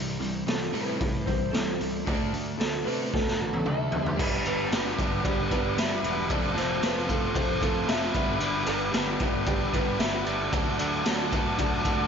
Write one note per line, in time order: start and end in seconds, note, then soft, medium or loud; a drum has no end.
0.00 0.16 C2 medium
0.00 0.18 C3 medium
0.00 0.18 E3 medium
0.00 2.05 E3 medium
0.00 0.18 G3 medium
0.00 2.05 G3 medium
0.00 2.05 C4 medium
0.00 2.05 G4 medium
0.20 0.42 C2 medium
0.20 0.45 C3 medium
0.20 0.45 E3 medium
0.20 0.45 G3 medium
0.20 open hi-hat soft
0.46 0.69 C2 medium
0.46 0.71 C3 medium
0.46 0.71 E3 loud
0.46 0.71 G3 medium
0.46 0.76 A4 medium
0.46 snare loud
0.46 open hi-hat medium
0.72 0.96 A2 medium
0.72 0.98 C3 medium
0.72 0.99 E3 medium
0.72 0.99 G3 loud
0.72 0.99 C4 medium
0.72 1.26 B4 medium
0.72 open hi-hat medium
1.00 1.23 A2 loud
1.00 1.24 C3 medium
1.00 1.25 E3 medium
1.00 1.24 G3 medium
1.00 kick loud
1.00 open hi-hat medium
1.26 1.49 C2 medium
1.26 1.50 C3 medium
1.26 1.50 E3 medium
1.26 1.51 G3 medium
1.26 1.54 C5 loud
1.26 kick medium
1.26 open hi-hat soft
1.52 1.75 C2 medium
1.52 1.78 C3 medium
1.52 1.78 E3 medium
1.52 1.78 G3 medium
1.52 1.90 A4 medium
1.52 snare loud
1.52 open hi-hat medium
1.80 2.02 C2 medium
1.80 2.04 C3 medium
1.80 2.04 E3 medium
1.80 2.04 G3 medium
1.80 open hi-hat medium
2.05 2.29 D2 medium
2.05 2.31 D3 medium
2.05 4.16 F#3 medium
2.05 2.31 A3 loud
2.05 4.16 A3 medium
2.05 2.31 D4 loud
2.05 3.88 D4 medium
2.05 4.00 A4 medium
2.05 kick loud
2.05 open hi-hat medium
2.32 2.55 D2 medium
2.32 2.57 D3 medium
2.32 2.57 A3 medium
2.32 open hi-hat soft
2.58 2.82 D2 medium
2.58 2.82 D3 medium
2.58 2.83 A3 medium
2.58 2.87 A4 loud
2.58 snare loud
2.58 open hi-hat medium
2.84 3.08 C3 medium
2.84 3.10 D3 medium
2.84 3.10 A3 loud
2.84 3.10 D4 medium
2.84 3.13 B4 loud
2.88 open hi-hat medium
3.11 3.35 D2 loud
3.11 3.36 D3 medium
3.11 3.36 A3 medium
3.11 3.41 A4 medium
3.11 kick loud
3.11 snare medium
3.27 snare medium
3.39 3.62 A1 medium
3.39 3.63 D3 medium
3.39 3.63 A3 medium
3.39 3.65 A4 loud
3.45 3.67 F#4 medium
3.53 high tom medium
3.65 3.88 D2 medium
3.65 3.89 D3 medium
3.65 3.89 A3 medium
3.65 4.10 E5 loud
3.65 mid tom medium
3.69 4.17 A4 medium
3.87 4.15 D3 medium
3.87 4.09 C4 medium
3.87 4.10 D4 medium
3.92 4.14 D2 medium
3.92 4.16 A3 medium
3.92 4.12 E4 medium
3.92 floor tom loud
3.96 4.14 F4 medium
3.96 4.15 G4 medium
4.01 4.16 A4 medium
4.01 4.18 B4 medium
4.06 4.19 C5 medium
4.06 4.21 D5 loud
4.06 floor tom medium
4.11 4.21 D5 medium
4.11 4.22 E5 medium
4.16 4.40 G1 medium
4.16 4.71 G2 medium
4.16 4.69 D3 medium
4.16 4.68 G3 loud
4.16 6.27 G3 medium
4.16 4.44 B3 loud
4.16 6.27 B3 medium
4.16 4.39 D4 loud
4.16 4.45 D4 loud
4.16 6.27 D4 medium
4.16 4.39 G4 medium
4.16 4.42 B4 loud
4.16 6.28 B4 medium
4.16 4.40 B4 loud
4.16 4.24 F5 medium
4.16 kick loud
4.16 crash loud
4.20 4.47 G3 medium
4.20 4.43 D4 medium
4.20 4.28 D5 loud
4.43 4.66 G1 medium
4.43 4.69 B3 medium
4.43 4.65 D4 loud
4.43 4.69 D4 medium
4.43 4.66 G4 medium
4.43 4.70 B4 medium
4.43 4.67 B4 medium
4.43 ride medium
4.48 4.71 G3 medium
4.48 5.22 G4 medium
4.48 5.28 B4 loud
4.69 4.93 G1 medium
4.69 5.24 D3 medium
4.69 5.21 G3 medium
4.69 4.96 B3 loud
4.69 4.97 D4 loud
4.69 4.92 D4 medium
4.69 4.92 G4 medium
4.69 4.94 B4 loud
4.69 4.93 B4 medium
4.69 snare loud
4.69 ride medium
4.74 4.95 D4 medium
4.87 snare soft
4.96 5.20 G1 medium
4.96 5.23 B3 medium
4.96 5.18 D4 medium
4.96 5.22 D4 medium
4.96 5.19 G4 medium
4.96 5.25 B4 medium
4.96 5.19 B4 medium
4.96 kick medium
4.96 ride medium
5.00 5.52 G3 medium
5.22 5.46 G1 medium
5.22 5.74 G3 medium
5.22 5.48 B3 medium
5.22 5.44 D4 medium
5.22 5.50 D4 loud
5.22 5.45 G4 medium
5.22 5.45 B4 medium
5.22 kick loud
5.22 ride loud
5.26 5.53 G4 loud
5.26 5.47 B4 loud
5.48 5.72 G1 medium
5.48 5.76 B3 medium
5.48 5.71 D4 medium
5.48 5.75 D4 medium
5.48 5.71 G4 medium
5.48 5.77 B4 medium
5.48 5.72 D5 medium
5.48 kick medium
5.48 ride medium
5.52 5.76 G3 medium
5.52 5.76 G4 medium
5.52 5.79 B4 medium
5.74 5.98 G1 medium
5.74 6.27 G2 medium
5.74 6.28 D3 medium
5.74 6.27 G3 medium
5.74 6.03 B3 medium
5.74 5.97 D4 loud
5.74 6.05 D4 medium
5.74 5.97 G4 medium
5.74 5.98 B4 medium
5.74 6.01 B4 medium
5.74 ride loud
5.78 6.30 E5 loud
5.78 snare loud
6.02 6.30 E1 medium
6.02 6.28 B3 medium
6.02 6.24 D4 medium
6.02 6.29 D4 medium
6.02 6.24 G4 medium
6.02 6.28 B4 medium
6.02 6.25 B4 medium
6.02 ride medium
6.28 6.52 F1 medium
6.28 6.82 F2 medium
6.28 6.80 C3 medium
6.28 6.80 F3 medium
6.28 6.81 A3 loud
6.28 8.13 A3 medium
6.28 6.56 C4 medium
6.28 8.13 C4 medium
6.28 6.50 F4 medium
6.28 8.13 F4 medium
6.28 6.55 F4 loud
6.28 6.50 A4 medium
6.28 6.53 A4 loud
6.28 8.13 C5 medium
6.28 6.51 C5 loud
6.28 6.57 D5 loud
6.28 kick loud
6.28 ride loud
6.54 6.78 F1 medium
6.54 6.81 F3 medium
6.54 6.83 A3 medium
6.54 6.82 C4 medium
6.54 6.76 F4 medium
6.54 6.82 F4 medium
6.54 6.83 A4 medium
6.54 6.77 A4 medium
6.54 6.77 D5 loud
6.54 ride medium
6.58 6.84 C5 medium
6.58 snare soft
6.80 7.25 F1 medium
6.80 7.35 C3 medium
6.80 7.32 F3 medium
6.80 7.34 A3 loud
6.80 7.09 C4 loud
6.80 7.02 F4 medium
6.80 7.08 F4 loud
6.80 7.03 A4 medium
6.80 7.03 C5 medium
6.80 snare loud
6.80 ride medium
6.84 7.06 A4 loud
6.84 7.11 B4 medium
6.97 snare soft
7.06 7.61 A3 medium
7.06 7.28 F4 medium
7.06 7.35 F4 medium
7.06 7.29 A4 medium
7.06 7.36 A4 medium
7.06 7.29 C5 medium
7.06 kick medium
7.06 ride medium
7.11 7.63 F3 medium
7.11 7.34 C4 medium
7.11 7.37 A4 medium
7.33 7.56 F1 loud
7.33 7.87 F3 medium
7.33 7.85 A3 loud
7.33 7.63 C4 medium
7.33 7.55 F4 medium
7.33 7.62 F4 medium
7.33 7.56 A4 medium
7.33 7.60 A4 medium
7.33 7.56 C5 medium
7.33 7.63 C5 loud
7.33 kick loud
7.33 ride loud
7.59 7.83 F1 medium
7.59 7.89 A3 medium
7.59 7.90 C4 medium
7.59 7.82 F4 medium
7.59 7.88 F4 medium
7.59 7.82 A4 medium
7.59 7.89 A4 medium
7.59 7.83 C5 medium
7.59 kick medium
7.59 ride medium
7.64 7.88 F3 medium
7.64 7.87 C4 medium
7.85 8.09 F1 medium
7.85 8.12 F2 medium
7.85 8.13 C3 medium
7.85 8.12 A3 medium
7.85 8.13 C4 medium
7.85 8.08 F4 medium
7.85 8.13 F4 medium
7.85 8.09 A4 medium
7.85 8.37 B4 medium
7.85 8.09 C5 loud
7.85 snare loud
7.85 ride loud
7.90 8.14 F3 medium
7.90 8.13 A4 medium
7.90 8.43 E5 medium
8.13 8.36 G1 medium
8.13 8.39 D3 medium
8.13 8.37 G3 medium
8.13 8.39 B3 medium
8.13 10.50 B3 medium
8.13 10.50 D4 medium
8.13 8.39 D4 medium
8.13 8.57 G4 medium
8.13 10.50 G4 medium
8.13 8.40 B4 medium
8.13 8.57 B4 medium
8.13 10.50 D5 medium
8.13 8.58 D5 medium
8.13 kick loud
8.13 ride medium
8.17 8.38 G2 medium
8.38 8.62 G1 medium
8.38 8.93 G2 medium
8.38 8.93 D3 medium
8.38 8.91 G3 loud
8.38 8.65 B3 loud
8.38 8.67 D4 loud
8.38 8.63 B4 loud
8.38 8.69 D5 loud
8.38 ride loud
8.64 8.89 G1 loud
8.64 8.93 B3 medium
8.64 8.92 D4 medium
8.64 8.88 G4 loud
8.64 9.43 G4 medium
8.64 8.94 B4 medium
8.64 9.49 B4 loud
8.64 8.88 B4 medium
8.64 ride medium
8.68 8.94 G3 medium
8.68 8.89 D5 loud
8.92 9.15 G1 medium
8.92 9.47 D3 medium
8.92 9.45 G3 loud
8.92 9.19 B3 loud
8.92 9.22 D4 loud
8.92 9.14 G4 medium
8.92 9.15 B4 medium
8.92 9.17 B4 loud
8.92 9.15 D5 medium
8.92 snare loud
8.92 ride medium
8.98 9.20 D4 medium
9.18 9.42 G1 medium
9.18 9.47 B3 medium
9.18 9.47 D4 medium
9.18 9.41 G4 medium
9.18 9.48 B4 medium
9.18 9.42 B4 medium
9.18 9.42 E5 medium
9.18 kick medium
9.18 ride medium
9.23 9.75 G3 medium
9.46 9.68 G1 loud
9.46 9.98 G3 medium
9.46 9.73 B3 medium
9.46 9.75 D4 medium
9.46 9.68 G4 medium
9.46 9.72 G4 medium
9.46 9.68 B4 medium
9.46 9.71 B4 loud
9.46 9.69 D5 medium
9.46 kick loud
9.46 ride medium
9.72 9.95 G1 medium
9.72 10.00 G3 medium
9.72 10.00 B3 medium
9.72 10.00 D4 medium
9.72 9.94 G4 medium
9.72 9.98 G4 medium
9.72 10.01 B4 medium
9.72 9.95 B4 medium
9.72 10.01 B4 medium
9.72 9.95 D5 medium
9.72 kick medium
9.72 ride medium
9.98 10.21 G1 medium
9.98 10.51 G2 medium
9.98 10.50 D3 medium
9.98 10.51 G3 medium
9.98 10.26 B3 medium
9.98 10.28 D4 medium
9.98 10.20 G4 medium
9.98 10.21 B4 medium
9.98 10.21 D5 loud
9.98 10.27 E5 loud
9.98 snare loud
9.98 ride loud
10.03 10.24 B4 loud
10.24 10.48 G1 medium
10.24 10.51 B3 medium
10.24 10.46 G4 medium
10.24 12.07 A4 medium
10.24 10.50 B4 medium
10.24 10.47 B4 medium
10.24 12.07 D5 medium
10.24 10.47 E5 medium
10.24 ride medium
10.28 10.53 D4 medium
10.51 10.74 D2 medium
10.51 11.03 D3 loud
10.51 10.81 F#3 medium
10.51 10.79 A3 loud
10.51 12.07 A3 medium
10.51 10.82 D4 loud
10.51 12.07 D4 medium
10.51 10.73 F#4 medium
10.51 12.07 F#4 medium
10.51 10.79 F#4 medium
10.51 10.73 A4 medium
10.51 10.74 D5 loud
10.51 12.07 D5 medium
10.51 kick loud
10.51 ride loud
10.55 10.77 A4 loud
10.77 11.01 D2 medium
10.77 11.06 A3 medium
10.77 10.99 F#4 loud
10.77 11.05 F#4 medium
10.77 11.06 A4 medium
10.77 11.00 A4 medium
10.77 11.00 D5 loud
10.77 ride medium
10.82 11.05 F#3 medium
10.82 11.05 D4 medium
11.03 11.48 D2 medium
11.03 11.56 D3 loud
11.03 11.34 F#3 medium
11.03 11.32 A3 medium
11.03 11.33 D4 loud
11.03 11.25 F#4 medium
11.03 11.32 F#4 loud
11.03 11.26 A4 medium
11.03 11.30 A4 loud
11.03 11.27 D5 loud
11.03 snare loud
11.03 ride loud
11.30 11.85 A3 medium
11.30 11.57 D4 medium
11.30 11.52 F#4 medium
11.30 11.58 F#4 medium
11.30 11.59 A4 medium
11.30 11.53 A4 medium
11.30 11.53 B4 loud
11.30 kick medium
11.30 ride medium
11.35 11.87 F#3 medium
11.57 11.80 D2 loud
11.57 12.07 D3 medium
11.57 11.84 D4 medium
11.57 11.79 F#4 medium
11.57 11.83 F#4 medium
11.57 11.79 A4 medium
11.57 11.81 A4 loud
11.57 11.80 D5 medium
11.57 kick loud
11.57 ride loud
11.82 12.06 D2 medium
11.82 12.07 D4 medium
11.82 12.07 F#4 medium
11.82 12.06 F#4 medium
11.82 12.07 A4 medium
11.82 12.06 A4 medium
11.82 12.07 F#5 medium
11.82 kick medium
11.82 ride medium
11.87 12.07 F#3 medium
11.87 12.07 A3 medium
11.87 12.07 D5 loud